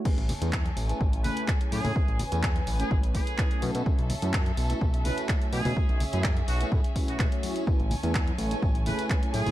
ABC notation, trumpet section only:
X:1
M:4/4
L:1/16
Q:1/4=126
K:Alyd
V:1 name="Trumpet section"
z8 z2 B2 z2 G2- | G2 z4 z G2 z G4 z2 | z8 z2 B2 z2 G2- | G2 z G G z F2 z3 F F z3 |
z8 z2 B2 z2 G2 |]